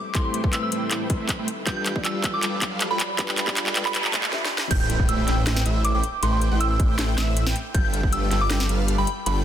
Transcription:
Already playing: felt piano G3 C4 E4 A4 B4, riser
0.14 felt piano G3 C4 E4 A4, supersaw synth A3 E4 B4 C5 G5, synth bell C6, kick, clap, closed hi-hat
0.25 synth bell C6
0.34 closed hi-hat
0.42 felt piano G3 C4 E4, supersaw synth A3 B4 C5 G5, kick
0.46 felt piano B4
0.53 synth bell E6, clap, closed hi-hat
0.63 synth bell E6
0.72 supersaw synth A3 E4 B4 C5 G5, closed hi-hat
0.91 supersaw synth A3 E4 B4 C5 G5, clap, closed hi-hat
1.10 supersaw synth A3 B4 C5, kick, closed hi-hat
1.29 kick, clap, closed hi-hat
1.39 supersaw synth A3 E4 B4 C5 G5
1.48 closed hi-hat
1.66 felt piano G3 D4 F4 B4, supersaw synth G3 F4 A4 B4 G5, synth bell G6, kick, clap, closed hi-hat
1.77 synth bell G6
1.86 clap, closed hi-hat
1.94 felt piano G3 D4 F4, supersaw synth G3 F4 B4, kick
1.98 felt piano D5
2.05 synth bell E6, clap, closed hi-hat
2.24 supersaw synth G3 F4 A4 B4 G5, kick, clap, closed hi-hat
2.34 synth bell D6
2.43 supersaw synth G3 F4 A4 B4 G5, clap, closed hi-hat
2.62 supersaw synth G3 F4 A4 F5, kick, clap, closed hi-hat
2.81 clap, closed hi-hat
2.91 supersaw synth G3 F4 A4 B4 G5, synth bell B5
3.00 clap, closed hi-hat
3.18 felt piano G3 D4 F4 B4, supersaw synth G3 F4 A4 B4, synth bell B5, kick, clap, closed hi-hat, noise sweep
3.29 clap
3.38 clap, closed hi-hat
3.46 felt piano G3 D4 F4 D5, kick, clap
3.57 clap, closed hi-hat
3.67 clap
3.76 supersaw synth G3 F4 A4 B4 G5, clap, closed hi-hat
3.85 synth bell B5, clap
3.95 supersaw synth G3 F4 A4 B4 G5, clap, closed hi-hat
4.05 clap
4.14 supersaw synth G3 F4 F5, kick, clap, closed hi-hat
4.24 clap
4.32 felt piano G3 D4 F4 E5, snare
4.45 snare
4.58 snare
4.71 detuned saw bass A1, supersaw synth A3 E4 B4 C5 G5, digital synth lead G5, synth bell G6, kick, closed hi-hat, crash, impact
4.80 synth bell G6
4.90 closed hi-hat
5.00 detuned saw bass A1, supersaw synth A3 E4 C5, digital synth lead G5, kick
5.09 synth bell E6, closed hi-hat
5.28 detuned saw bass A1, supersaw synth A3 E4 B4 C5 G5, digital synth lead G5, snare, closed hi-hat
5.47 detuned saw bass A1, supersaw synth A3 E4 B4 C5 G5, digital synth lead G5, snare, closed hi-hat
5.57 snare
5.66 detuned saw bass A1, supersaw synth A3 E4 B4 C5 E5, digital synth lead E5, closed hi-hat
5.85 synth bell D6, closed hi-hat
5.94 detuned saw bass A1, supersaw synth A3 E4 B4 C5 G5, digital synth lead G5, synth bell D6
6.04 closed hi-hat
6.23 detuned saw bass A1, supersaw synth A3 E4 B4 C5 G5, digital synth lead G5, synth bell C6, closed hi-hat
6.32 synth bell C6
6.42 closed hi-hat
6.51 detuned saw bass A1, supersaw synth A3 E4 B4 C5 G5, digital synth lead G5
6.61 synth bell E6, closed hi-hat
6.70 synth bell E6
6.79 detuned saw bass A1, supersaw synth A3 E4 B4 C5, digital synth lead G5, kick, closed hi-hat
6.98 detuned saw bass A1, supersaw synth A3 E4 B4 C5 G5, digital synth lead G5, snare, closed hi-hat
7.17 detuned saw bass A1, supersaw synth A3 E4 B4 C5 E5, digital synth lead E5, snare, closed hi-hat
7.37 closed hi-hat
7.46 detuned saw bass A1, supersaw synth A3 E4 B4 C5 G5, digital synth lead G5, snare
7.56 closed hi-hat
7.74 detuned saw bass G1, supersaw synth G3 F4 A4 B4 G5, digital synth lead G5, synth bell G6, kick, closed hi-hat
7.84 synth bell G6
7.94 closed hi-hat
8.03 detuned saw bass G1, supersaw synth F4 A4 B4 G5, digital synth lead G5, kick
8.13 synth bell E6, closed hi-hat
8.31 detuned saw bass G1, supersaw synth G3 F4 A4 B4 G5, digital synth lead G5, snare, closed hi-hat
8.41 synth bell D6
8.50 detuned saw bass G1, supersaw synth G3 F4 A4 B4 G5, digital synth lead G5, snare, closed hi-hat
8.60 snare
8.69 detuned saw bass G1, supersaw synth G3 F4 A4 B4 F5, digital synth lead F5, closed hi-hat
8.88 closed hi-hat
8.98 detuned saw bass G1, supersaw synth G3 F4 A4 B4 G5, digital synth lead G5, synth bell B5
9.07 closed hi-hat
9.26 detuned saw bass G1, supersaw synth G3 F4 A4 B4 G5, digital synth lead G5, synth bell B5, closed hi-hat

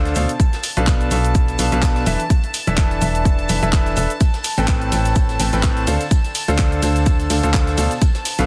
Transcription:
Already playing: fm bass D2, grand piano D3 D4 A4 C5 F5, string section A5
0.05 snare, closed hi-hat, shaker
0.15 fm bass D2, grand piano B2 D4 A4 C5 F5, open hi-hat, shaker
0.29 closed hi-hat, shaker
0.40 kick, closed hi-hat, shaker
0.53 snare, closed hi-hat, shaker
0.63 snare, open hi-hat, shaker
0.77 fm bass B1, grand piano B2 D4 A4 B4 F5, closed hi-hat, shaker
0.87 kick, snare, clap, closed hi-hat, shaker
1.01 closed hi-hat, shaker
1.11 fm bass B1, grand piano B2 D4 A4 B4 F5, snare, open hi-hat, shaker
1.25 closed hi-hat, shaker
1.35 kick, closed hi-hat, shaker
1.48 snare, closed hi-hat, shaker
1.58 fm bass B1, grand piano B2 D4 A4 B4 F5, open hi-hat, shaker
1.72 fm bass B1, grand piano B2 D4 A4 B4 F5, closed hi-hat, shaker
1.82 kick, snare, clap, closed hi-hat, shaker
1.96 snare, closed hi-hat, shaker
2.06 fm bass E1, grand piano E3 D4 A4 B4 E5, open hi-hat, shaker
2.20 closed hi-hat, shaker
2.30 kick, closed hi-hat, shaker
2.44 closed hi-hat, shaker
2.54 open hi-hat, shaker
2.67 fm bass E1, grand piano E3 D4 A4 B4 E5, closed hi-hat, shaker
2.76 kick, snare, clap, closed hi-hat, shaker
2.91 closed hi-hat, shaker
3.01 fm bass E1, grand piano E3 D4 A4 B4 E5, open hi-hat, shaker
3.15 closed hi-hat, shaker
3.25 kick, closed hi-hat, shaker
3.39 closed hi-hat, shaker
3.49 fm bass E1, grand piano E3 D4 A4 B4 E5, open hi-hat, shaker
3.63 fm bass E1, grand piano E3 D4 A4 B4 E5, closed hi-hat, shaker
3.73 kick, snare, clap, closed hi-hat, shaker
3.86 snare, closed hi-hat, shaker
3.96 fm bass E1, grand piano D4 A4 B4 E5, open hi-hat, shaker
4.10 closed hi-hat, shaker
4.21 kick, closed hi-hat, ride, tambourine, shaker
4.34 snare, closed hi-hat, tambourine, shaker
4.44 snare, open hi-hat, ride, tambourine, shaker
4.57 fm bass A1, grand piano A2 C4 A4 B4 G5, closed hi-hat, tambourine, shaker
4.68 kick, snare, clap, closed hi-hat, ride, tambourine, shaker
4.81 closed hi-hat, shaker
4.92 fm bass A1, grand piano A2 C4 A4 B4 G5, snare, open hi-hat, ride, tambourine, shaker
5.05 closed hi-hat, tambourine, shaker
5.16 kick, closed hi-hat, ride, tambourine, shaker
5.29 snare, closed hi-hat, tambourine, shaker
5.40 fm bass A1, grand piano A2 C4 A4 B4 G5, open hi-hat, ride, tambourine, shaker
5.53 fm bass A1, grand piano A2 C4 A4 B4 G5, closed hi-hat, tambourine, shaker
5.63 kick, snare, clap, closed hi-hat, ride, tambourine, shaker
5.76 snare, closed hi-hat, shaker
5.87 fm bass D2, grand piano D3 D4 A4 C5 F5, open hi-hat, ride, tambourine, shaker
6.01 closed hi-hat, tambourine, shaker
6.11 kick, closed hi-hat, ride, tambourine, shaker
6.24 closed hi-hat, tambourine, shaker
6.35 open hi-hat, ride, tambourine, shaker
6.48 fm bass D2, grand piano D3 D4 A4 C5 F5, closed hi-hat, tambourine, shaker
6.58 kick, snare, clap, closed hi-hat, ride, tambourine, shaker
6.72 closed hi-hat, shaker
6.82 fm bass D2, grand piano D3 D4 A4 C5 F5, open hi-hat, ride, tambourine, shaker
6.96 closed hi-hat, tambourine, shaker
7.06 kick, closed hi-hat, ride, tambourine, shaker
7.20 closed hi-hat, tambourine, shaker
7.30 fm bass D2, grand piano D3 D4 A4 C5 F5, open hi-hat, ride, tambourine, shaker
7.43 fm bass D2, grand piano D3 D4 A4 C5 F5, closed hi-hat, tambourine, shaker
7.53 kick, snare, clap, closed hi-hat, ride, tambourine, shaker
7.67 snare, closed hi-hat, shaker
7.77 fm bass D2, grand piano B2 D4 A4 C5 F5, open hi-hat, ride, tambourine, shaker
7.91 closed hi-hat, tambourine, shaker
8.01 kick, closed hi-hat, ride, tambourine, shaker
8.15 snare, closed hi-hat, tambourine, shaker
8.25 snare, open hi-hat, ride, tambourine, shaker
8.39 fm bass B1, grand piano B2 D4 A4 B4 F5, closed hi-hat, tambourine, shaker

